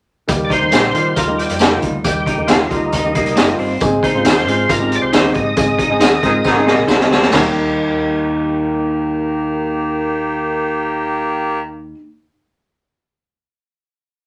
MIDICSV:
0, 0, Header, 1, 8, 480
1, 0, Start_track
1, 0, Key_signature, -3, "major"
1, 0, Tempo, 439239
1, 315, Time_signature, 4, 2, 24, 8
1, 15592, End_track
2, 0, Start_track
2, 0, Title_t, "Tonewheel organ"
2, 0, Program_c, 0, 16
2, 488, Note_on_c, 0, 74, 76
2, 559, Note_off_c, 0, 74, 0
2, 569, Note_on_c, 0, 72, 105
2, 1278, Note_on_c, 0, 70, 82
2, 1303, Note_off_c, 0, 72, 0
2, 1510, Note_on_c, 0, 67, 64
2, 1523, Note_off_c, 0, 70, 0
2, 1959, Note_off_c, 0, 67, 0
2, 2234, Note_on_c, 0, 67, 91
2, 2703, Note_on_c, 0, 65, 86
2, 2729, Note_off_c, 0, 67, 0
2, 2932, Note_off_c, 0, 65, 0
2, 2943, Note_on_c, 0, 63, 71
2, 3867, Note_off_c, 0, 63, 0
2, 4409, Note_on_c, 0, 72, 95
2, 5132, Note_on_c, 0, 70, 88
2, 5147, Note_off_c, 0, 72, 0
2, 5414, Note_on_c, 0, 74, 61
2, 5418, Note_off_c, 0, 70, 0
2, 5484, Note_on_c, 0, 72, 107
2, 5485, Note_off_c, 0, 74, 0
2, 5818, Note_off_c, 0, 72, 0
2, 5834, Note_on_c, 0, 75, 91
2, 7477, Note_off_c, 0, 75, 0
2, 15592, End_track
3, 0, Start_track
3, 0, Title_t, "Clean electric guitar"
3, 0, Program_c, 1, 27
3, 784, Note_on_c, 1, 58, 81
3, 793, Note_on_c, 1, 63, 75
3, 802, Note_on_c, 1, 67, 78
3, 912, Note_off_c, 1, 58, 0
3, 917, Note_off_c, 1, 63, 0
3, 921, Note_off_c, 1, 67, 0
3, 1746, Note_on_c, 1, 58, 76
3, 1756, Note_on_c, 1, 63, 89
3, 1765, Note_on_c, 1, 67, 93
3, 1873, Note_off_c, 1, 58, 0
3, 1878, Note_off_c, 1, 63, 0
3, 1883, Note_off_c, 1, 67, 0
3, 2717, Note_on_c, 1, 58, 64
3, 2722, Note_on_c, 1, 63, 80
3, 2730, Note_on_c, 1, 67, 79
3, 2839, Note_off_c, 1, 58, 0
3, 2842, Note_off_c, 1, 63, 0
3, 2846, Note_off_c, 1, 67, 0
3, 3669, Note_on_c, 1, 58, 69
3, 3680, Note_on_c, 1, 63, 77
3, 3686, Note_on_c, 1, 67, 82
3, 3796, Note_off_c, 1, 58, 0
3, 3801, Note_off_c, 1, 63, 0
3, 3805, Note_off_c, 1, 67, 0
3, 4646, Note_on_c, 1, 63, 80
3, 4654, Note_on_c, 1, 68, 71
3, 4660, Note_on_c, 1, 72, 82
3, 4765, Note_off_c, 1, 63, 0
3, 4770, Note_off_c, 1, 68, 0
3, 4773, Note_off_c, 1, 72, 0
3, 5603, Note_on_c, 1, 63, 91
3, 5611, Note_on_c, 1, 68, 89
3, 5620, Note_on_c, 1, 72, 92
3, 5725, Note_off_c, 1, 63, 0
3, 5729, Note_off_c, 1, 68, 0
3, 5734, Note_off_c, 1, 72, 0
3, 6558, Note_on_c, 1, 63, 78
3, 6562, Note_on_c, 1, 68, 80
3, 6567, Note_on_c, 1, 72, 82
3, 6684, Note_off_c, 1, 63, 0
3, 6686, Note_off_c, 1, 68, 0
3, 6688, Note_off_c, 1, 72, 0
3, 7514, Note_on_c, 1, 63, 88
3, 7522, Note_on_c, 1, 68, 93
3, 7527, Note_on_c, 1, 72, 96
3, 7642, Note_off_c, 1, 63, 0
3, 7646, Note_off_c, 1, 68, 0
3, 7649, Note_off_c, 1, 72, 0
3, 7977, Note_on_c, 1, 58, 82
3, 8014, Note_on_c, 1, 63, 90
3, 8038, Note_on_c, 1, 67, 86
3, 13052, Note_off_c, 1, 58, 0
3, 13088, Note_off_c, 1, 63, 0
3, 13112, Note_off_c, 1, 67, 0
3, 15592, End_track
4, 0, Start_track
4, 0, Title_t, "Clean electric guitar"
4, 0, Program_c, 2, 27
4, 548, Note_on_c, 2, 63, 69
4, 748, Note_off_c, 2, 63, 0
4, 1037, Note_on_c, 2, 65, 72
4, 1233, Note_off_c, 2, 65, 0
4, 1270, Note_on_c, 2, 65, 70
4, 1723, Note_off_c, 2, 65, 0
4, 1755, Note_on_c, 2, 63, 61
4, 2206, Note_off_c, 2, 63, 0
4, 2480, Note_on_c, 2, 63, 65
4, 2675, Note_off_c, 2, 63, 0
4, 2961, Note_on_c, 2, 65, 72
4, 3156, Note_off_c, 2, 65, 0
4, 3201, Note_on_c, 2, 63, 85
4, 3396, Note_off_c, 2, 63, 0
4, 3444, Note_on_c, 2, 58, 84
4, 3638, Note_off_c, 2, 58, 0
4, 3922, Note_on_c, 2, 60, 72
4, 4117, Note_off_c, 2, 60, 0
4, 4411, Note_on_c, 2, 63, 73
4, 4603, Note_off_c, 2, 63, 0
4, 4888, Note_on_c, 2, 65, 73
4, 5082, Note_off_c, 2, 65, 0
4, 5132, Note_on_c, 2, 65, 78
4, 5578, Note_off_c, 2, 65, 0
4, 5615, Note_on_c, 2, 63, 69
4, 6060, Note_off_c, 2, 63, 0
4, 6331, Note_on_c, 2, 63, 71
4, 6525, Note_off_c, 2, 63, 0
4, 6809, Note_on_c, 2, 65, 67
4, 7004, Note_off_c, 2, 65, 0
4, 7052, Note_on_c, 2, 63, 77
4, 7246, Note_off_c, 2, 63, 0
4, 7284, Note_on_c, 2, 58, 80
4, 7481, Note_off_c, 2, 58, 0
4, 7766, Note_on_c, 2, 60, 75
4, 7963, Note_off_c, 2, 60, 0
4, 8011, Note_on_c, 2, 58, 73
4, 9405, Note_off_c, 2, 58, 0
4, 15592, End_track
5, 0, Start_track
5, 0, Title_t, "Grand piano"
5, 0, Program_c, 3, 0
5, 302, Note_on_c, 3, 55, 76
5, 307, Note_on_c, 3, 58, 76
5, 307, Note_on_c, 3, 63, 69
5, 313, Note_on_c, 3, 67, 91
5, 555, Note_off_c, 3, 55, 0
5, 558, Note_off_c, 3, 58, 0
5, 558, Note_off_c, 3, 63, 0
5, 561, Note_off_c, 3, 67, 0
5, 664, Note_on_c, 3, 55, 63
5, 666, Note_on_c, 3, 58, 53
5, 674, Note_on_c, 3, 63, 59
5, 677, Note_on_c, 3, 67, 69
5, 916, Note_off_c, 3, 55, 0
5, 917, Note_off_c, 3, 58, 0
5, 921, Note_off_c, 3, 63, 0
5, 923, Note_off_c, 3, 67, 0
5, 1031, Note_on_c, 3, 55, 66
5, 1033, Note_on_c, 3, 58, 56
5, 1037, Note_on_c, 3, 63, 53
5, 1039, Note_on_c, 3, 67, 68
5, 1280, Note_off_c, 3, 55, 0
5, 1280, Note_off_c, 3, 58, 0
5, 1283, Note_off_c, 3, 63, 0
5, 1283, Note_off_c, 3, 67, 0
5, 1385, Note_on_c, 3, 55, 70
5, 1389, Note_on_c, 3, 58, 61
5, 1395, Note_on_c, 3, 67, 71
5, 1396, Note_on_c, 3, 63, 64
5, 1719, Note_off_c, 3, 55, 0
5, 1721, Note_off_c, 3, 58, 0
5, 1724, Note_off_c, 3, 63, 0
5, 1724, Note_off_c, 3, 67, 0
5, 1880, Note_on_c, 3, 55, 64
5, 1884, Note_on_c, 3, 58, 64
5, 1885, Note_on_c, 3, 63, 62
5, 1888, Note_on_c, 3, 65, 76
5, 2125, Note_off_c, 3, 55, 0
5, 2126, Note_off_c, 3, 58, 0
5, 2127, Note_off_c, 3, 63, 0
5, 2128, Note_off_c, 3, 65, 0
5, 2235, Note_on_c, 3, 55, 73
5, 2238, Note_on_c, 3, 58, 63
5, 2242, Note_on_c, 3, 63, 61
5, 2244, Note_on_c, 3, 67, 78
5, 2482, Note_off_c, 3, 55, 0
5, 2483, Note_off_c, 3, 58, 0
5, 2486, Note_off_c, 3, 63, 0
5, 2487, Note_off_c, 3, 67, 0
5, 2595, Note_on_c, 3, 55, 62
5, 2598, Note_on_c, 3, 58, 57
5, 2602, Note_on_c, 3, 63, 64
5, 2605, Note_on_c, 3, 67, 75
5, 2842, Note_off_c, 3, 55, 0
5, 2844, Note_off_c, 3, 58, 0
5, 2846, Note_off_c, 3, 63, 0
5, 2847, Note_off_c, 3, 67, 0
5, 2964, Note_on_c, 3, 55, 58
5, 2970, Note_on_c, 3, 58, 58
5, 2973, Note_on_c, 3, 63, 56
5, 2975, Note_on_c, 3, 67, 72
5, 3207, Note_off_c, 3, 55, 0
5, 3210, Note_off_c, 3, 58, 0
5, 3211, Note_off_c, 3, 63, 0
5, 3213, Note_off_c, 3, 67, 0
5, 3319, Note_on_c, 3, 55, 65
5, 3323, Note_on_c, 3, 63, 61
5, 3325, Note_on_c, 3, 58, 68
5, 3328, Note_on_c, 3, 67, 73
5, 3648, Note_off_c, 3, 55, 0
5, 3650, Note_off_c, 3, 58, 0
5, 3650, Note_off_c, 3, 63, 0
5, 3652, Note_off_c, 3, 67, 0
5, 3796, Note_on_c, 3, 58, 71
5, 3797, Note_on_c, 3, 55, 74
5, 3802, Note_on_c, 3, 63, 77
5, 3805, Note_on_c, 3, 65, 93
5, 4044, Note_off_c, 3, 58, 0
5, 4045, Note_off_c, 3, 55, 0
5, 4047, Note_off_c, 3, 63, 0
5, 4048, Note_off_c, 3, 65, 0
5, 4167, Note_on_c, 3, 60, 77
5, 4169, Note_on_c, 3, 56, 77
5, 4171, Note_on_c, 3, 63, 72
5, 4177, Note_on_c, 3, 68, 93
5, 4410, Note_off_c, 3, 60, 0
5, 4411, Note_off_c, 3, 56, 0
5, 4412, Note_off_c, 3, 63, 0
5, 4414, Note_off_c, 3, 68, 0
5, 4529, Note_on_c, 3, 56, 67
5, 4532, Note_on_c, 3, 60, 60
5, 4535, Note_on_c, 3, 65, 74
5, 4536, Note_on_c, 3, 63, 58
5, 4771, Note_off_c, 3, 56, 0
5, 4773, Note_off_c, 3, 60, 0
5, 4774, Note_off_c, 3, 63, 0
5, 4774, Note_off_c, 3, 65, 0
5, 4888, Note_on_c, 3, 56, 69
5, 4891, Note_on_c, 3, 60, 58
5, 4896, Note_on_c, 3, 63, 63
5, 4900, Note_on_c, 3, 68, 74
5, 5131, Note_off_c, 3, 56, 0
5, 5132, Note_off_c, 3, 60, 0
5, 5135, Note_off_c, 3, 63, 0
5, 5137, Note_off_c, 3, 68, 0
5, 5238, Note_on_c, 3, 56, 71
5, 5241, Note_on_c, 3, 63, 62
5, 5245, Note_on_c, 3, 60, 65
5, 5249, Note_on_c, 3, 67, 77
5, 5569, Note_off_c, 3, 56, 0
5, 5570, Note_off_c, 3, 63, 0
5, 5573, Note_off_c, 3, 60, 0
5, 5575, Note_off_c, 3, 67, 0
5, 5719, Note_on_c, 3, 56, 68
5, 5721, Note_on_c, 3, 60, 67
5, 5731, Note_on_c, 3, 63, 61
5, 5736, Note_on_c, 3, 67, 72
5, 5967, Note_off_c, 3, 56, 0
5, 5968, Note_off_c, 3, 60, 0
5, 5973, Note_off_c, 3, 63, 0
5, 5976, Note_off_c, 3, 67, 0
5, 6077, Note_on_c, 3, 56, 70
5, 6081, Note_on_c, 3, 60, 63
5, 6082, Note_on_c, 3, 63, 62
5, 6086, Note_on_c, 3, 68, 76
5, 6327, Note_off_c, 3, 56, 0
5, 6329, Note_off_c, 3, 60, 0
5, 6329, Note_off_c, 3, 63, 0
5, 6331, Note_off_c, 3, 68, 0
5, 6445, Note_on_c, 3, 56, 75
5, 6451, Note_on_c, 3, 60, 72
5, 6455, Note_on_c, 3, 63, 72
5, 6461, Note_on_c, 3, 68, 87
5, 6691, Note_off_c, 3, 56, 0
5, 6694, Note_off_c, 3, 60, 0
5, 6696, Note_off_c, 3, 63, 0
5, 6699, Note_off_c, 3, 68, 0
5, 6799, Note_on_c, 3, 56, 69
5, 6807, Note_on_c, 3, 60, 72
5, 6810, Note_on_c, 3, 63, 75
5, 6810, Note_on_c, 3, 70, 88
5, 7049, Note_off_c, 3, 56, 0
5, 7052, Note_off_c, 3, 60, 0
5, 7054, Note_off_c, 3, 63, 0
5, 7054, Note_off_c, 3, 70, 0
5, 7166, Note_on_c, 3, 56, 78
5, 7171, Note_on_c, 3, 63, 72
5, 7173, Note_on_c, 3, 60, 71
5, 7175, Note_on_c, 3, 68, 89
5, 7495, Note_off_c, 3, 56, 0
5, 7497, Note_off_c, 3, 63, 0
5, 7498, Note_off_c, 3, 60, 0
5, 7499, Note_off_c, 3, 68, 0
5, 7641, Note_on_c, 3, 56, 80
5, 7642, Note_on_c, 3, 63, 75
5, 7648, Note_on_c, 3, 60, 73
5, 7655, Note_on_c, 3, 68, 86
5, 7890, Note_off_c, 3, 56, 0
5, 7891, Note_off_c, 3, 63, 0
5, 7893, Note_off_c, 3, 60, 0
5, 7897, Note_off_c, 3, 68, 0
5, 7984, Note_on_c, 3, 55, 73
5, 8000, Note_on_c, 3, 58, 69
5, 8016, Note_on_c, 3, 63, 69
5, 8028, Note_on_c, 3, 67, 89
5, 13015, Note_off_c, 3, 55, 0
5, 13030, Note_off_c, 3, 58, 0
5, 13046, Note_off_c, 3, 63, 0
5, 13059, Note_off_c, 3, 67, 0
5, 15592, End_track
6, 0, Start_track
6, 0, Title_t, "Horn section"
6, 0, Program_c, 4, 61
6, 6813, Note_on_c, 4, 68, 91
6, 6814, Note_on_c, 4, 51, 86
6, 6817, Note_on_c, 4, 60, 78
6, 6887, Note_off_c, 4, 51, 0
6, 6887, Note_off_c, 4, 68, 0
6, 6889, Note_off_c, 4, 60, 0
6, 7050, Note_on_c, 4, 60, 91
6, 7051, Note_on_c, 4, 68, 93
6, 7056, Note_on_c, 4, 51, 81
6, 7390, Note_off_c, 4, 60, 0
6, 7390, Note_off_c, 4, 68, 0
6, 7393, Note_off_c, 4, 51, 0
6, 8012, Note_on_c, 4, 58, 81
6, 8013, Note_on_c, 4, 51, 86
6, 8015, Note_on_c, 4, 67, 88
6, 12678, Note_off_c, 4, 51, 0
6, 12678, Note_off_c, 4, 58, 0
6, 12679, Note_off_c, 4, 67, 0
6, 15592, End_track
7, 0, Start_track
7, 0, Title_t, "Fingered electric bass"
7, 0, Program_c, 5, 33
7, 312, Note_on_c, 5, 39, 94
7, 513, Note_off_c, 5, 39, 0
7, 671, Note_on_c, 5, 39, 88
7, 772, Note_off_c, 5, 39, 0
7, 790, Note_on_c, 5, 34, 87
7, 991, Note_off_c, 5, 34, 0
7, 1030, Note_on_c, 5, 51, 100
7, 1231, Note_off_c, 5, 51, 0
7, 1275, Note_on_c, 5, 39, 82
7, 1574, Note_off_c, 5, 39, 0
7, 1636, Note_on_c, 5, 41, 83
7, 1934, Note_off_c, 5, 41, 0
7, 2001, Note_on_c, 5, 38, 84
7, 2198, Note_off_c, 5, 38, 0
7, 2235, Note_on_c, 5, 39, 104
7, 2434, Note_off_c, 5, 39, 0
7, 2597, Note_on_c, 5, 39, 76
7, 2896, Note_off_c, 5, 39, 0
7, 2963, Note_on_c, 5, 38, 86
7, 3159, Note_off_c, 5, 38, 0
7, 3202, Note_on_c, 5, 39, 95
7, 3499, Note_off_c, 5, 39, 0
7, 3559, Note_on_c, 5, 36, 82
7, 3658, Note_off_c, 5, 36, 0
7, 3680, Note_on_c, 5, 30, 79
7, 3878, Note_off_c, 5, 30, 0
7, 3915, Note_on_c, 5, 31, 82
7, 4116, Note_off_c, 5, 31, 0
7, 4167, Note_on_c, 5, 32, 106
7, 4363, Note_off_c, 5, 32, 0
7, 4525, Note_on_c, 5, 32, 92
7, 4646, Note_on_c, 5, 39, 94
7, 4662, Note_off_c, 5, 32, 0
7, 4887, Note_off_c, 5, 39, 0
7, 4887, Note_on_c, 5, 44, 92
7, 5084, Note_off_c, 5, 44, 0
7, 5129, Note_on_c, 5, 32, 88
7, 5425, Note_off_c, 5, 32, 0
7, 5489, Note_on_c, 5, 36, 85
7, 5585, Note_off_c, 5, 36, 0
7, 5612, Note_on_c, 5, 39, 81
7, 5807, Note_off_c, 5, 39, 0
7, 5852, Note_on_c, 5, 44, 103
7, 6047, Note_off_c, 5, 44, 0
7, 6089, Note_on_c, 5, 32, 100
7, 6286, Note_off_c, 5, 32, 0
7, 6434, Note_on_c, 5, 32, 78
7, 6537, Note_off_c, 5, 32, 0
7, 6563, Note_on_c, 5, 39, 85
7, 6762, Note_off_c, 5, 39, 0
7, 6807, Note_on_c, 5, 44, 99
7, 7005, Note_off_c, 5, 44, 0
7, 7050, Note_on_c, 5, 32, 79
7, 7347, Note_off_c, 5, 32, 0
7, 7398, Note_on_c, 5, 34, 77
7, 7501, Note_off_c, 5, 34, 0
7, 7515, Note_on_c, 5, 37, 80
7, 7718, Note_off_c, 5, 37, 0
7, 7753, Note_on_c, 5, 38, 81
7, 7957, Note_off_c, 5, 38, 0
7, 7994, Note_on_c, 5, 39, 91
7, 13025, Note_off_c, 5, 39, 0
7, 15592, End_track
8, 0, Start_track
8, 0, Title_t, "Drums"
8, 311, Note_on_c, 9, 54, 73
8, 314, Note_on_c, 9, 42, 90
8, 315, Note_on_c, 9, 36, 118
8, 420, Note_off_c, 9, 54, 0
8, 423, Note_off_c, 9, 42, 0
8, 424, Note_off_c, 9, 36, 0
8, 550, Note_on_c, 9, 36, 76
8, 559, Note_on_c, 9, 42, 71
8, 659, Note_off_c, 9, 36, 0
8, 668, Note_off_c, 9, 42, 0
8, 783, Note_on_c, 9, 42, 90
8, 798, Note_on_c, 9, 54, 87
8, 801, Note_on_c, 9, 38, 94
8, 892, Note_off_c, 9, 42, 0
8, 907, Note_off_c, 9, 54, 0
8, 910, Note_off_c, 9, 38, 0
8, 915, Note_on_c, 9, 38, 30
8, 1024, Note_off_c, 9, 38, 0
8, 1034, Note_on_c, 9, 42, 65
8, 1143, Note_off_c, 9, 42, 0
8, 1270, Note_on_c, 9, 54, 65
8, 1273, Note_on_c, 9, 42, 79
8, 1275, Note_on_c, 9, 36, 81
8, 1380, Note_off_c, 9, 54, 0
8, 1382, Note_off_c, 9, 42, 0
8, 1384, Note_off_c, 9, 36, 0
8, 1520, Note_on_c, 9, 42, 56
8, 1629, Note_off_c, 9, 42, 0
8, 1630, Note_on_c, 9, 42, 55
8, 1739, Note_on_c, 9, 54, 83
8, 1740, Note_off_c, 9, 42, 0
8, 1753, Note_on_c, 9, 42, 81
8, 1766, Note_on_c, 9, 38, 107
8, 1848, Note_off_c, 9, 54, 0
8, 1862, Note_off_c, 9, 42, 0
8, 1875, Note_off_c, 9, 38, 0
8, 1988, Note_on_c, 9, 42, 66
8, 2001, Note_on_c, 9, 36, 85
8, 2098, Note_off_c, 9, 42, 0
8, 2110, Note_off_c, 9, 36, 0
8, 2233, Note_on_c, 9, 54, 76
8, 2236, Note_on_c, 9, 42, 93
8, 2237, Note_on_c, 9, 36, 112
8, 2343, Note_off_c, 9, 54, 0
8, 2345, Note_off_c, 9, 42, 0
8, 2346, Note_off_c, 9, 36, 0
8, 2473, Note_on_c, 9, 36, 75
8, 2480, Note_on_c, 9, 42, 66
8, 2582, Note_off_c, 9, 36, 0
8, 2589, Note_off_c, 9, 42, 0
8, 2709, Note_on_c, 9, 42, 94
8, 2716, Note_on_c, 9, 54, 90
8, 2727, Note_on_c, 9, 38, 97
8, 2818, Note_off_c, 9, 42, 0
8, 2825, Note_off_c, 9, 54, 0
8, 2836, Note_off_c, 9, 38, 0
8, 2960, Note_on_c, 9, 36, 92
8, 2960, Note_on_c, 9, 42, 60
8, 3069, Note_off_c, 9, 36, 0
8, 3070, Note_off_c, 9, 42, 0
8, 3195, Note_on_c, 9, 54, 69
8, 3197, Note_on_c, 9, 42, 78
8, 3199, Note_on_c, 9, 36, 73
8, 3305, Note_off_c, 9, 54, 0
8, 3306, Note_off_c, 9, 42, 0
8, 3309, Note_off_c, 9, 36, 0
8, 3440, Note_on_c, 9, 42, 60
8, 3446, Note_on_c, 9, 36, 81
8, 3550, Note_off_c, 9, 42, 0
8, 3555, Note_off_c, 9, 36, 0
8, 3560, Note_on_c, 9, 42, 55
8, 3669, Note_off_c, 9, 42, 0
8, 3676, Note_on_c, 9, 42, 84
8, 3680, Note_on_c, 9, 54, 79
8, 3689, Note_on_c, 9, 38, 98
8, 3785, Note_off_c, 9, 42, 0
8, 3789, Note_off_c, 9, 54, 0
8, 3799, Note_off_c, 9, 38, 0
8, 3800, Note_on_c, 9, 42, 46
8, 3909, Note_off_c, 9, 42, 0
8, 3914, Note_on_c, 9, 46, 47
8, 4023, Note_off_c, 9, 46, 0
8, 4158, Note_on_c, 9, 54, 75
8, 4161, Note_on_c, 9, 42, 103
8, 4166, Note_on_c, 9, 36, 116
8, 4267, Note_off_c, 9, 54, 0
8, 4271, Note_off_c, 9, 42, 0
8, 4276, Note_off_c, 9, 36, 0
8, 4402, Note_on_c, 9, 36, 82
8, 4412, Note_on_c, 9, 42, 69
8, 4512, Note_off_c, 9, 36, 0
8, 4521, Note_off_c, 9, 42, 0
8, 4640, Note_on_c, 9, 42, 100
8, 4654, Note_on_c, 9, 54, 92
8, 4658, Note_on_c, 9, 38, 94
8, 4749, Note_off_c, 9, 42, 0
8, 4764, Note_off_c, 9, 54, 0
8, 4767, Note_off_c, 9, 38, 0
8, 4780, Note_on_c, 9, 38, 33
8, 4889, Note_off_c, 9, 38, 0
8, 4896, Note_on_c, 9, 42, 62
8, 5005, Note_off_c, 9, 42, 0
8, 5129, Note_on_c, 9, 36, 87
8, 5130, Note_on_c, 9, 42, 84
8, 5131, Note_on_c, 9, 54, 69
8, 5239, Note_off_c, 9, 36, 0
8, 5239, Note_off_c, 9, 42, 0
8, 5240, Note_off_c, 9, 54, 0
8, 5373, Note_on_c, 9, 42, 56
8, 5482, Note_off_c, 9, 42, 0
8, 5606, Note_on_c, 9, 42, 77
8, 5608, Note_on_c, 9, 54, 78
8, 5619, Note_on_c, 9, 38, 104
8, 5715, Note_off_c, 9, 42, 0
8, 5718, Note_off_c, 9, 54, 0
8, 5728, Note_off_c, 9, 38, 0
8, 5837, Note_on_c, 9, 42, 57
8, 5852, Note_on_c, 9, 36, 82
8, 5946, Note_off_c, 9, 42, 0
8, 5962, Note_off_c, 9, 36, 0
8, 6081, Note_on_c, 9, 42, 100
8, 6089, Note_on_c, 9, 36, 121
8, 6095, Note_on_c, 9, 54, 75
8, 6191, Note_off_c, 9, 42, 0
8, 6198, Note_off_c, 9, 36, 0
8, 6204, Note_off_c, 9, 54, 0
8, 6323, Note_on_c, 9, 36, 85
8, 6326, Note_on_c, 9, 42, 68
8, 6432, Note_off_c, 9, 36, 0
8, 6436, Note_off_c, 9, 42, 0
8, 6560, Note_on_c, 9, 42, 96
8, 6575, Note_on_c, 9, 54, 96
8, 6578, Note_on_c, 9, 38, 95
8, 6669, Note_off_c, 9, 42, 0
8, 6684, Note_off_c, 9, 54, 0
8, 6688, Note_off_c, 9, 38, 0
8, 6808, Note_on_c, 9, 36, 90
8, 6808, Note_on_c, 9, 42, 63
8, 6917, Note_off_c, 9, 36, 0
8, 6918, Note_off_c, 9, 42, 0
8, 7042, Note_on_c, 9, 54, 65
8, 7049, Note_on_c, 9, 36, 78
8, 7060, Note_on_c, 9, 38, 50
8, 7151, Note_off_c, 9, 54, 0
8, 7158, Note_off_c, 9, 36, 0
8, 7170, Note_off_c, 9, 38, 0
8, 7294, Note_on_c, 9, 38, 66
8, 7404, Note_off_c, 9, 38, 0
8, 7522, Note_on_c, 9, 54, 72
8, 7536, Note_on_c, 9, 38, 73
8, 7631, Note_off_c, 9, 54, 0
8, 7645, Note_off_c, 9, 38, 0
8, 7655, Note_on_c, 9, 38, 66
8, 7765, Note_off_c, 9, 38, 0
8, 7778, Note_on_c, 9, 38, 94
8, 7887, Note_off_c, 9, 38, 0
8, 7892, Note_on_c, 9, 38, 76
8, 7998, Note_on_c, 9, 54, 82
8, 8002, Note_off_c, 9, 38, 0
8, 8004, Note_on_c, 9, 43, 102
8, 8004, Note_on_c, 9, 49, 81
8, 8014, Note_on_c, 9, 38, 108
8, 8107, Note_off_c, 9, 54, 0
8, 8113, Note_off_c, 9, 43, 0
8, 8113, Note_off_c, 9, 49, 0
8, 8123, Note_off_c, 9, 38, 0
8, 15592, End_track
0, 0, End_of_file